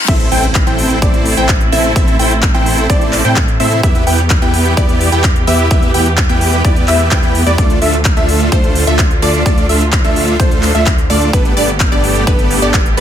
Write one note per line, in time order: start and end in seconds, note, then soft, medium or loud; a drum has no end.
0.00 0.11 F3 medium
0.00 0.11 A3 medium
0.00 0.10 D4 medium
0.00 0.11 F4 medium
0.08 0.29 A1 loud
0.08 3.80 A3 medium
0.08 0.29 C4 medium
0.08 3.80 C4 medium
0.08 0.29 E4 medium
0.08 3.80 E4 medium
0.08 0.29 A4 medium
0.08 0.29 C5 medium
0.08 0.29 E5 medium
0.08 0.29 E5 loud
0.08 kick loud
0.08 closed hi-hat loud
0.08 crash loud
0.08 impact medium
0.20 closed hi-hat soft
0.32 0.65 A1 medium
0.32 0.45 C4 loud
0.32 0.45 E4 medium
0.32 0.45 A4 medium
0.32 0.45 C5 medium
0.32 0.45 G5 loud
0.32 open hi-hat loud
0.43 closed hi-hat soft
0.55 kick loud
0.55 clap loud
0.55 closed hi-hat loud
0.67 1.00 A1 loud
0.67 0.99 C4 medium
0.67 0.99 E4 medium
0.67 0.99 A4 medium
0.67 0.99 C5 medium
0.67 0.99 G5 medium
0.67 closed hi-hat soft
0.79 open hi-hat medium
0.90 closed hi-hat soft
1.02 1.35 A1 loud
1.02 1.34 C4 medium
1.02 1.34 E4 medium
1.02 1.34 A4 medium
1.02 1.34 C5 medium
1.02 1.34 D5 loud
1.02 1.34 D5 medium
1.02 kick loud
1.02 closed hi-hat loud
1.14 closed hi-hat soft
1.26 open hi-hat loud
1.37 1.70 A1 loud
1.37 1.51 C4 medium
1.37 1.51 E4 medium
1.37 1.51 A4 medium
1.37 1.51 C5 medium
1.37 1.51 G5 medium
1.37 1.51 G5 loud
1.37 closed hi-hat soft
1.49 kick loud
1.49 clap loud
1.49 closed hi-hat medium
1.61 closed hi-hat soft
1.72 1.94 A1 loud
1.72 1.93 C4 loud
1.72 1.93 E4 medium
1.72 1.93 A4 medium
1.72 1.93 C5 medium
1.72 1.93 E5 loud
1.72 open hi-hat medium
1.84 closed hi-hat soft
1.96 2.17 A1 loud
1.96 2.16 C4 medium
1.96 2.17 E4 medium
1.96 2.16 A4 medium
1.96 2.16 C5 medium
1.96 2.16 E5 medium
1.96 2.17 E5 loud
1.96 kick loud
1.96 closed hi-hat loud
2.08 closed hi-hat soft
2.19 2.52 A1 medium
2.19 2.33 C4 loud
2.19 2.33 E4 medium
2.19 2.33 A4 medium
2.19 2.33 C5 medium
2.19 2.33 G5 loud
2.19 open hi-hat loud
2.31 closed hi-hat soft
2.43 kick loud
2.43 clap loud
2.43 closed hi-hat loud
2.54 2.87 A1 loud
2.54 2.87 C4 medium
2.54 2.87 E4 medium
2.54 2.87 A4 medium
2.54 2.87 C5 medium
2.54 2.87 G5 medium
2.54 closed hi-hat soft
2.66 open hi-hat loud
2.78 closed hi-hat soft
2.89 3.22 A1 loud
2.89 3.22 C4 medium
2.89 3.22 D5 loud
2.89 kick loud
2.89 closed hi-hat loud
3.01 closed hi-hat soft
3.13 clap medium
3.13 open hi-hat loud
3.25 3.58 A2 loud
3.25 3.38 C4 medium
3.25 3.38 E4 medium
3.25 3.38 A4 medium
3.25 3.38 C5 medium
3.25 3.38 G5 loud
3.25 3.38 G5 medium
3.25 closed hi-hat soft
3.36 kick loud
3.36 clap loud
3.36 closed hi-hat medium
3.48 closed hi-hat soft
3.60 3.81 A2 loud
3.60 3.81 C4 loud
3.60 3.81 E4 medium
3.60 3.81 A4 medium
3.60 3.81 C5 medium
3.60 3.81 E5 loud
3.60 open hi-hat loud
3.72 closed hi-hat soft
3.83 4.04 E2 loud
3.83 7.55 E3 medium
3.83 4.04 B3 medium
3.83 5.69 B3 medium
3.83 4.04 E4 medium
3.83 4.04 G4 medium
3.83 7.55 G4 medium
3.83 4.04 B4 medium
3.83 4.04 E5 loud
3.83 4.04 E5 medium
3.83 kick loud
3.83 closed hi-hat medium
3.95 closed hi-hat soft
4.07 4.40 E2 medium
4.07 4.20 B3 loud
4.07 4.21 E4 medium
4.07 4.20 G4 medium
4.07 4.20 B4 medium
4.07 4.20 G5 loud
4.07 4.21 G5 loud
4.07 open hi-hat loud
4.19 closed hi-hat soft
4.30 kick loud
4.30 clap loud
4.30 closed hi-hat medium
4.42 4.75 E2 loud
4.42 4.74 B3 medium
4.42 4.74 E4 medium
4.42 4.74 G4 medium
4.42 4.74 B4 medium
4.42 4.74 G5 medium
4.42 closed hi-hat soft
4.54 open hi-hat loud
4.65 closed hi-hat soft
4.77 5.10 E2 medium
4.77 5.09 B3 medium
4.77 5.09 E4 medium
4.77 5.09 G4 medium
4.77 5.09 B4 medium
4.77 5.09 D5 loud
4.77 5.09 D5 medium
4.77 kick loud
4.77 closed hi-hat medium
4.89 closed hi-hat soft
5.01 open hi-hat loud
5.12 5.45 E2 medium
5.12 5.26 B3 medium
5.12 5.26 E4 medium
5.12 5.26 G4 medium
5.12 5.26 B4 medium
5.12 5.26 G5 medium
5.12 closed hi-hat soft
5.24 kick loud
5.24 clap loud
5.24 closed hi-hat medium
5.36 closed hi-hat soft
5.47 5.69 E2 loud
5.47 5.68 B3 medium
5.47 5.68 E4 medium
5.47 5.68 G4 medium
5.47 5.68 B4 medium
5.47 5.68 E5 loud
5.47 open hi-hat medium
5.59 closed hi-hat soft
5.71 5.92 E2 loud
5.71 9.42 A3 medium
5.71 5.91 B3 medium
5.71 5.91 E4 medium
5.71 5.91 G4 medium
5.71 5.91 B4 medium
5.71 5.91 E5 loud
5.71 5.91 E5 medium
5.71 kick loud
5.71 closed hi-hat medium
5.83 closed hi-hat soft
5.94 6.27 E2 loud
5.94 6.08 B3 loud
5.94 6.08 E4 medium
5.94 6.08 G4 medium
5.94 6.08 B4 medium
5.94 6.08 G5 loud
5.94 open hi-hat loud
6.06 closed hi-hat soft
6.18 kick loud
6.18 clap loud
6.18 closed hi-hat medium
6.29 6.62 E2 loud
6.29 6.62 B3 medium
6.29 6.62 E4 medium
6.29 6.62 G4 medium
6.29 6.62 B4 medium
6.29 6.62 G5 medium
6.29 closed hi-hat soft
6.41 open hi-hat loud
6.53 closed hi-hat soft
6.64 6.86 E2 loud
6.64 6.86 B3 medium
6.64 6.86 E4 medium
6.64 6.86 G4 medium
6.64 6.86 D5 loud
6.64 6.86 D5 medium
6.64 kick loud
6.64 closed hi-hat medium
6.76 closed hi-hat soft
6.88 7.09 E2 loud
6.88 7.09 B3 medium
6.88 7.09 E4 medium
6.88 7.09 G4 medium
6.88 7.09 B4 medium
6.88 7.09 E5 loud
6.88 clap medium
6.88 open hi-hat loud
7.00 closed hi-hat soft
7.11 7.44 E2 loud
7.11 7.44 B3 medium
7.11 7.44 E4 medium
7.11 7.44 G4 medium
7.11 7.44 B4 medium
7.11 7.44 G5 medium
7.11 kick loud
7.11 clap loud
7.11 closed hi-hat medium
7.23 closed hi-hat soft
7.35 open hi-hat medium
7.46 7.56 E2 medium
7.46 7.57 B3 medium
7.46 7.57 E4 medium
7.46 7.57 G4 medium
7.46 7.57 B4 medium
7.46 7.57 D5 loud
7.46 closed hi-hat soft
7.58 7.79 D2 loud
7.58 11.30 D3 medium
7.58 7.79 A3 medium
7.58 7.79 D4 medium
7.58 7.79 F4 medium
7.58 11.30 F4 medium
7.58 7.79 A4 medium
7.58 7.79 D5 loud
7.58 kick loud
7.58 closed hi-hat medium
7.70 closed hi-hat soft
7.82 8.15 D2 loud
7.82 7.95 A3 loud
7.82 7.95 D4 medium
7.82 7.95 F4 medium
7.82 7.95 A4 medium
7.82 7.95 E5 loud
7.82 open hi-hat loud
7.93 closed hi-hat soft
8.05 kick loud
8.05 clap loud
8.05 closed hi-hat medium
8.17 8.50 D2 loud
8.17 8.49 A3 medium
8.17 8.49 D4 medium
8.17 8.49 F4 medium
8.17 8.49 A4 medium
8.17 8.49 E5 medium
8.17 closed hi-hat soft
8.29 open hi-hat medium
8.40 closed hi-hat soft
8.52 8.85 D2 loud
8.52 8.84 A3 medium
8.52 8.84 D4 medium
8.52 8.84 F4 medium
8.52 8.84 A4 medium
8.52 8.84 C5 loud
8.52 kick loud
8.52 closed hi-hat medium
8.64 closed hi-hat soft
8.75 open hi-hat loud
8.87 9.20 D2 loud
8.87 9.01 A3 medium
8.87 9.01 D4 medium
8.87 9.01 F4 medium
8.87 9.01 A4 medium
8.87 9.01 E5 loud
8.87 9.01 E5 medium
8.87 closed hi-hat soft
8.99 kick loud
8.99 clap loud
8.99 closed hi-hat medium
9.11 closed hi-hat soft
9.22 9.44 D2 loud
9.22 9.43 A3 loud
9.22 9.43 D4 medium
9.22 9.43 F4 medium
9.22 9.43 A4 medium
9.22 9.43 D5 loud
9.22 open hi-hat medium
9.34 closed hi-hat soft
9.46 9.67 D2 loud
9.46 9.66 A3 medium
9.46 9.66 D4 medium
9.46 9.66 F4 medium
9.46 9.66 A4 medium
9.46 9.66 D5 loud
9.46 9.66 D5 medium
9.46 kick loud
9.46 closed hi-hat medium
9.58 closed hi-hat soft
9.69 10.02 D2 medium
9.69 9.83 A3 loud
9.69 9.83 D4 medium
9.69 9.83 F4 medium
9.69 9.83 A4 medium
9.69 9.83 E5 loud
9.69 open hi-hat medium
9.81 closed hi-hat soft
9.93 kick loud
9.93 clap loud
9.93 closed hi-hat loud
10.04 10.37 D2 loud
10.04 10.37 A3 medium
10.04 10.37 D4 medium
10.04 10.37 F4 medium
10.04 10.37 A4 medium
10.04 10.37 E5 medium
10.04 closed hi-hat soft
10.16 open hi-hat medium
10.28 closed hi-hat soft
10.40 10.72 D2 loud
10.40 10.72 A3 medium
10.40 10.72 D4 medium
10.40 10.72 F4 medium
10.40 10.72 A4 medium
10.40 10.72 C5 medium
10.40 10.72 C5 loud
10.40 kick loud
10.40 closed hi-hat loud
10.51 closed hi-hat soft
10.63 clap medium
10.63 open hi-hat loud
10.75 11.08 D2 loud
10.75 10.88 A3 medium
10.75 10.88 D4 medium
10.75 10.88 F4 medium
10.75 10.88 A4 medium
10.75 10.88 E5 medium
10.75 10.88 E5 loud
10.75 closed hi-hat soft
10.86 kick loud
10.86 clap loud
10.86 closed hi-hat medium
10.98 closed hi-hat soft
11.10 11.31 D2 loud
11.10 11.31 A3 loud
11.10 11.31 D4 medium
11.10 11.31 F4 medium
11.10 11.31 A4 medium
11.10 11.30 D5 loud
11.10 11.31 D5 loud
11.10 open hi-hat medium
11.22 closed hi-hat soft
11.33 11.54 G1 loud
11.33 13.00 A3 medium
11.33 11.54 B3 medium
11.33 13.00 B3 medium
11.33 11.54 D4 medium
11.33 13.00 G4 medium
11.33 11.54 A4 medium
11.33 11.54 B4 medium
11.33 11.54 B4 loud
11.33 kick loud
11.33 closed hi-hat loud
11.45 closed hi-hat soft
11.57 11.90 G1 medium
11.57 11.70 B3 medium
11.57 11.70 D4 medium
11.57 11.70 G4 medium
11.57 11.70 A4 medium
11.57 11.70 D5 loud
11.57 open hi-hat loud
11.69 closed hi-hat soft
11.80 kick loud
11.80 clap loud
11.80 closed hi-hat loud
11.92 12.25 G1 loud
11.92 12.24 B3 medium
11.92 12.24 D4 medium
11.92 12.24 G4 medium
11.92 12.24 A4 medium
11.92 12.24 D5 medium
11.92 closed hi-hat soft
12.04 open hi-hat medium
12.15 closed hi-hat soft
12.27 12.60 G1 loud
12.27 12.59 B3 medium
12.27 12.59 D4 medium
12.27 12.59 G4 medium
12.27 12.59 A4 medium
12.27 12.59 B4 loud
12.27 kick loud
12.27 closed hi-hat loud
12.39 closed hi-hat soft
12.51 open hi-hat loud
12.62 12.95 G1 medium
12.62 12.76 B3 medium
12.62 12.76 D4 medium
12.62 12.76 G4 medium
12.62 12.76 A4 medium
12.62 12.76 D5 loud
12.62 12.76 D5 medium
12.62 closed hi-hat soft
12.74 kick loud
12.74 clap loud
12.74 closed hi-hat medium
12.86 closed hi-hat soft